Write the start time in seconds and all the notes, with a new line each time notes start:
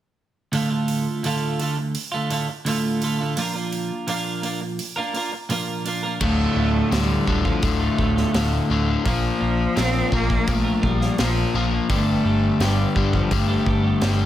0.52 D2 A2 D3 A3 F4, open hi-hat
0.70 D3 A3 F4
0.88 open hi-hat
1.23 D2 A2 D3 A3 F4, open hi-hat
1.59 A2 D3 A3 F4, open hi-hat
1.78 muted clean electric guitar stroke
1.95 open hi-hat
2.12 D3 A3 F4
2.30 A2 D3 A3 F4, open hi-hat
2.48 muted clean electric guitar stroke
2.65 D2 A2 D3 A3 F4, open hi-hat
3.01 A2 D3 A3 F4, open hi-hat
3.19 D3 A3 F4
3.37 A#2 F3 A#3 D4 F4 A#4, open hi-hat
3.54 A#3 D4 F4 A#4
3.73 open hi-hat
4.07 A#2 F3 A#3 D4 F4 A#4, open hi-hat
4.43 A#3 D4 F4 A#4, open hi-hat
4.61 muted clean electric guitar stroke
4.79 open hi-hat
4.96 A#3 D4 F4 A#4
5.14 A#3 D4 F4 A#4, open hi-hat
5.33 muted clean electric guitar stroke
5.49 A#2 F3 A#3 D4 F4 A#4, open hi-hat
5.85 A#3 D4 F4 A#4, open hi-hat
6.03 A#3 D4 F4 A#4
6.20 D1 D2 A2 D3 A3 F4, kick, crash
6.55 D1 A2 D3 A3 F4
6.91 D1 D2 A2 D3 G3 A3 F4, snare, open hi-hat
7.09 D3 A3 F4
7.27 D1 D2 A2 D3 A3 F4, kick
7.44 D3 F3 A3 F4, kick
7.62 D1 D2 A2 D3 A3, kick, open hi-hat
7.80 D3 A3 F4
7.98 D1 A2 D3 A3 F4, kick
8.16 D3 A3 F4, snare
8.33 D1 D2 A2 D3 A3 F4, snare, open hi-hat
8.69 D1 D2 A2 D3 A3 F4
8.86 D3 A3 F4
9.04 A#1 A#2 F3 A#3 D4 F4 A#4, kick, open hi-hat
9.39 A#1 A#3 D4 F4 A#4
9.75 A#1 A#2 F3 A#3 C4 D4 F4 A#4, snare, open hi-hat
9.93 A#3 D4 F4 A#4
10.10 A#1 A#2 F3 A#3 D4 F4 A#4, kick
10.14 A#3
10.29 D4 F4, kick
10.47 A#1 A#2 F3 A3 A#3, kick, open hi-hat
10.64 A#3 D4 F4 A#4
10.82 A#1 A#3 D4 F4 A#4, kick
10.86 G3
11.00 A#3 D4 F4 A#4, snare
11.17 A#1 A#2 F3 A#3 D4 F4 A#4, snare, open hi-hat
11.53 A#1 A#2 F3 A#3 D4 F4 A#4
11.71 A#3 D4 F4 A#4
11.89 G1 G2 D3 G3 A3 B3 D4 G4, kick, open hi-hat
12.24 G1 G3 B3 D4 G4
12.60 G1 G2 D3 G3 B3 D4 G4, snare, open hi-hat
12.77 G3 B3 D4 G4
12.95 G1 G2 D3 G3 B3 D4 G4, kick
13.12 F3 G3 B3 D4 G4, kick
13.31 G1 G2 D3 G3 A3, kick, open hi-hat
13.48 G3 B3 D4 G4
13.66 G1 G3 B3 D4 G4, kick
13.83 G3 B3 D4 G4
14.01 G1 G2 D3 G3 B3 D4 G4, snare, open hi-hat